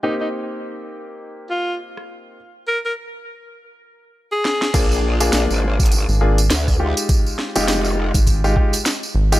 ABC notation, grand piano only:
X:1
M:4/4
L:1/16
Q:"Swing 16ths" 1/4=102
K:Bbmix
V:1 name="Grand piano"
[B,CEG]16 | z16 | [B,DFA]3 [B,DFA]6- [B,DFA] [B,DFA] z3 [A,EFG]2- | [A,EFG]3 [A,EFG]6 [A,EFG] [A,EFG] z4 [A,EFG] |]